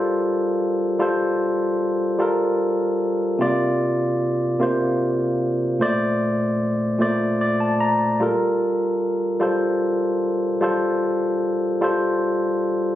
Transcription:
Already playing: G3 F4 A4 A#4 C5
0.99 G3 F4 A4 C5
2.19 G3 F4 A4 A#4
3.39 C3 A#3 F4 D5
4.59 C3 A#3 F4 C5
5.79 A#2 A3 C5 D5
6.99 A#2 A3 C5 D5
7.41 D5
7.60 A5
7.80 A#5
8.20 G3 F4 A4 A#4
9.39 G3 F4 A4 C5
10.61 G3 F4 A4 C5
11.81 G3 F4 A4 C5

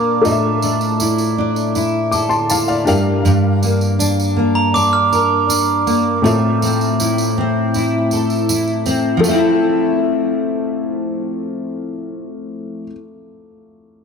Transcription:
Already playing: A#2 A#3 D4 F4 A#4 F5
0.22 A2 A3 D4 F4 A4 D#5, tambourine
0.32 E5
0.62 D4, tambourine
0.81 tambourine
1.00 E4, tambourine
1.18 tambourine
1.38 D4
1.56 tambourine
1.75 E4, tambourine
2.11 A4 D6, tambourine
2.29 A5 C6, tambourine
2.50 E4 F5 A5, tambourine
2.68 D5 F5, tambourine
2.85 G2 D4 G4 A#4 F5, tambourine
3.25 G2, tambourine
3.63 A#3, tambourine
3.81 tambourine
3.99 D4, tambourine
4.20 tambourine
4.36 A#3
4.55 A#5
4.74 D4 D6, tambourine
4.93 F6
5.12 A#4, tambourine
5.49 D4, tambourine
5.87 A#3, tambourine
6.22 A2 C4 F4 A4, tambourine
6.26 E5
6.62 C4, tambourine
6.81 tambourine
7.00 E4, tambourine
7.18 tambourine
7.38 C4
7.74 E4, tambourine
8.11 A4, tambourine
8.30 tambourine
8.49 E4, tambourine
8.67 tambourine
8.86 C4, tambourine
9.17 F3 A3
9.23 A3 F4, tambourine
9.28 C4 E5
9.34 E4
9.38 A4

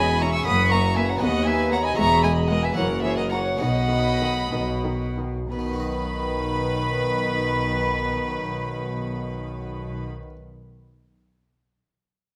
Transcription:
Already playing: E1 E2 C#4 G#4 D#5 G#5 B5
0.21 C#4 E5 A#5 C#6
0.33 G#5 C#6 E6
0.42 F#1 F#2 C#4 F#4 A#4 B5 D#6
0.46 F#2 A#3 F#5
0.71 A#3 E5 A#5 C#6
0.95 A#3 B4 E5 G#5
1.07 C#5 F#5 A#5
1.17 B3 F#4 B4 F#5
1.21 D#2 B3 D#5
1.45 B3 B4 E5 G#5
1.71 B3 C#5 F#5 A#5
1.83 D#5 G#5 B5
1.93 B3 E4 G#4 E5 C#6
1.97 E1 E2 G#3 A#5
2.22 G#3 D#5 G#5 B5
2.49 G#3 A#4 D#5 F#5
2.62 B4 E5 G#5
2.72 F#2 E3 A#3 E4 F#4 A#4 F#5
2.77 F#1 F#2 C#5
3.03 E3 G#4 C#5 E5
3.17 A#4 D#5 F#5
3.30 E3 C#5 F#5 A#5
3.57 B1 B2 D#3 B3 D#4 F#4 D#5 F#5 B5
3.61 B2
3.90 D#3
4.20 D#3
4.51 B1 B2 D#3
4.84 D#3
5.17 D#3
5.51 B1 B2 D#3 B4 B5
5.59 B3
5.66 D#4
5.73 F#4
5.80 D#5

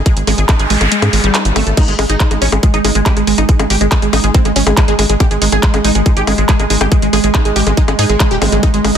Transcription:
0.06 G#3, kick, closed hi-hat, noise sweep
0.17 G#1, closed hi-hat
0.27 G#1 G#3, open hi-hat, high bongo
0.38 G#1 G#4, closed hi-hat
0.49 D#4, kick, clap, closed hi-hat, high bongo
0.59 G#1 G#4, closed hi-hat
0.70 A1 G#3, open hi-hat
0.81 G#1, closed hi-hat, high bongo
0.92 G#3, closed hi-hat
1.02 G#2 G#4, closed hi-hat, high bongo
1.13 G#1 G#3, open hi-hat
1.24 G#1 G3, closed hi-hat
1.34 D#4, clap, closed hi-hat, high bongo
1.45 G#1, closed hi-hat
1.56 G#1 A3, open hi-hat, high bongo
1.67 G#1 A4, closed hi-hat
1.77 G#3 D#4, kick, closed hi-hat, crash, high bongo
1.88 G#1 G#3, closed hi-hat
1.99 G#1 G#3, open hi-hat, high bongo
2.10 G#1 D#4 G#4, closed hi-hat
2.20 G#3 D#4, kick, clap, closed hi-hat
2.31 G#1 G#3 G#4, closed hi-hat, high bongo
2.42 A1 G#3 C#4, open hi-hat
2.52 G#1 G#3, closed hi-hat, high bongo
2.63 G#3, kick, closed hi-hat
2.74 G#1 D#4 G#4, closed hi-hat
2.84 G#1 G#3 D#4, open hi-hat, high bongo
2.95 G#1 G#3 G#4, closed hi-hat
3.06 G#3 G4, kick, clap, closed hi-hat, high bongo
3.17 G#1 G#3, closed hi-hat
3.27 G#1 G#3, open hi-hat
3.38 G#1 D#4 G#4, closed hi-hat, high bongo
3.49 G#3 D#4, kick, closed hi-hat
3.59 G#1 G#3 G#4, closed hi-hat, high bongo
3.70 G#1 G#3 G4, open hi-hat
3.81 G#1 G#3, closed hi-hat
3.92 G#3, kick, clap, closed hi-hat, high bongo
4.02 G#1 G#3 G#4, closed hi-hat
4.13 A1 D#4, open hi-hat, high bongo
4.24 G#1 G#3 G#4, closed hi-hat
4.34 G#3 C4, kick, closed hi-hat
4.45 G#1 G#3, closed hi-hat, high bongo
4.56 G#1 G#3 C#4, open hi-hat
4.67 G#1 G#3 G#4, closed hi-hat, high bongo
4.77 G#3 D#4, kick, clap, closed hi-hat
4.88 G#1 G#3 G#4, closed hi-hat
4.99 G#1 G#3, open hi-hat, high bongo
5.09 G#1 G#3, closed hi-hat
5.20 G#3 G4, kick, closed hi-hat, high bongo
5.31 G#1 G#3 G#4, closed hi-hat
5.42 G#1 G#3 D#4, open hi-hat
5.52 G#1 G#4, closed hi-hat, high bongo
5.63 G#3, kick, clap, closed hi-hat
5.74 G#1 G#3, closed hi-hat, high bongo
5.84 A1 G#3 D#4, open hi-hat
5.95 G#1 G#3 G#4, closed hi-hat
6.06 G#3 D#4, kick, closed hi-hat, high bongo
6.17 G#1 G4 G#4, closed hi-hat
6.27 G#1 G#3, open hi-hat, high bongo
6.38 G#1 G#3, closed hi-hat
6.49 G#3 G#4, kick, clap, closed hi-hat
6.59 G#1 G#3 G#4, closed hi-hat, high bongo
6.70 G#1 G#3 D#4, open hi-hat
6.81 G#1 G4 G#4, closed hi-hat, high bongo
6.92 G#3, kick, closed hi-hat
7.02 G#1 G#3, closed hi-hat
7.13 G#1 G#3 G#4, open hi-hat, high bongo
7.24 G#1 G#3 G#4, closed hi-hat
7.34 G#3 D#4, kick, clap, closed hi-hat, high bongo
7.45 G#1 G#3 G#4, closed hi-hat
7.56 A1 G#3 G4, open hi-hat
7.67 G#1 G#3, closed hi-hat, high bongo
7.77 G#3 D#4, kick, closed hi-hat
7.88 G#1 G#3 G#4, closed hi-hat, high bongo
7.99 G#2 D#4 G#4, open hi-hat
8.09 G#1 G#3 G#4, closed hi-hat
8.20 G#3, kick, clap, closed hi-hat, high bongo
8.31 D#1 G4, closed hi-hat
8.42 G#1 G#3 C4, open hi-hat, zap, high bongo
8.52 G#1 G3 G#3, closed hi-hat
8.63 G#3 D#4, kick, closed hi-hat, high bongo
8.74 G#1 G#3, closed hi-hat
8.84 G#1 G#3, open hi-hat, high bongo

